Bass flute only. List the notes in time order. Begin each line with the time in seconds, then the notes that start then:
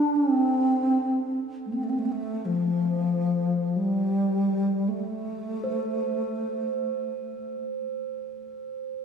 Already playing: D4
0.16 C4
1.66 A3
1.74 C4
1.84 A3
1.90 C4
1.99 A3
2.06 C4
2.12 A3
2.45 F3
3.76 G3
4.88 A3